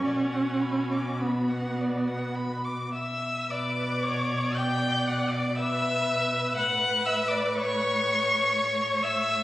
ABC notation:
X:1
M:3/4
L:1/16
Q:1/4=58
K:Bm
V:1 name="Violin"
F8- F2 e'2 | d'4 g'2 f' d' e'4 | f'2 e' d' c'6 e'2 |]
V:2 name="Violin"
d f b d' b f d f b d' e2 | d4 g2 f d e4 | f2 e d c6 e2 |]
V:3 name="Viola"
C4 B,6 z2 | B2 c2 d4 B4- | B8 c4 |]
V:4 name="Cello" clef=bass
B,,12 | B,,12 | A,,12 |]